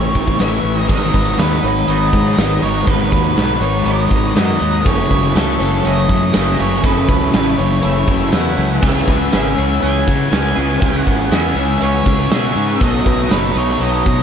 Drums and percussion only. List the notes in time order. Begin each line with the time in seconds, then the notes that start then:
0.15 kick, closed hi-hat
0.28 kick
0.39 snare, closed hi-hat
0.65 closed hi-hat
0.89 kick, crash, tambourine
1.14 kick, closed hi-hat
1.38 snare, closed hi-hat, tambourine
1.51 closed hi-hat
1.63 closed hi-hat, tambourine
1.77 snare
1.88 closed hi-hat
2.01 closed hi-hat
2.13 kick, closed hi-hat, tambourine
2.26 closed hi-hat
2.38 snare, closed hi-hat, tambourine
2.51 closed hi-hat
2.62 closed hi-hat, tambourine
2.87 kick, closed hi-hat, tambourine
3.00 closed hi-hat
3.12 kick, closed hi-hat
3.24 closed hi-hat
3.37 snare, closed hi-hat, tambourine
3.61 closed hi-hat, tambourine
3.74 closed hi-hat
3.86 closed hi-hat
3.98 closed hi-hat
4.11 kick, closed hi-hat, tambourine
4.23 closed hi-hat
4.35 snare, closed hi-hat, tambourine
4.49 closed hi-hat
4.60 closed hi-hat, tambourine
4.74 closed hi-hat
4.85 kick, closed hi-hat, tambourine
5.11 kick, closed hi-hat
5.35 snare, closed hi-hat, tambourine
5.48 closed hi-hat
5.59 closed hi-hat, tambourine
5.73 snare
5.85 closed hi-hat
5.97 closed hi-hat
6.09 kick, closed hi-hat, tambourine
6.21 closed hi-hat
6.33 snare, closed hi-hat, tambourine
6.46 closed hi-hat
6.58 closed hi-hat, tambourine
6.83 kick, closed hi-hat, tambourine
6.96 closed hi-hat
7.08 kick, closed hi-hat, tambourine
7.21 closed hi-hat
7.33 snare, closed hi-hat, tambourine
7.58 closed hi-hat, tambourine
7.71 snare, closed hi-hat
7.83 closed hi-hat, tambourine
7.96 closed hi-hat
8.07 kick, closed hi-hat, tambourine
8.20 closed hi-hat
8.32 snare, closed hi-hat, tambourine
8.45 closed hi-hat
8.57 closed hi-hat, tambourine
8.70 closed hi-hat
8.82 kick, crash, tambourine
9.08 kick, closed hi-hat
9.31 snare, closed hi-hat, tambourine
9.45 closed hi-hat
9.57 closed hi-hat, tambourine
9.72 snare
9.83 closed hi-hat
9.95 closed hi-hat
10.06 kick, closed hi-hat, tambourine
10.20 closed hi-hat
10.31 snare, closed hi-hat, tambourine
10.45 closed hi-hat
10.56 closed hi-hat, tambourine
10.81 kick, closed hi-hat, tambourine
10.94 closed hi-hat
11.07 kick, closed hi-hat
11.19 closed hi-hat
11.31 snare, closed hi-hat, tambourine
11.56 closed hi-hat, tambourine
11.70 closed hi-hat
11.81 closed hi-hat
11.94 closed hi-hat
12.06 kick, closed hi-hat, tambourine
12.19 closed hi-hat
12.31 snare, closed hi-hat, tambourine
12.43 closed hi-hat
12.56 closed hi-hat, tambourine
12.68 closed hi-hat
12.81 kick, closed hi-hat, tambourine
13.06 kick, closed hi-hat
13.30 snare, closed hi-hat, tambourine
13.43 closed hi-hat
13.56 closed hi-hat, tambourine
13.69 snare
13.81 closed hi-hat
13.94 closed hi-hat
14.06 kick, closed hi-hat, tambourine
14.19 closed hi-hat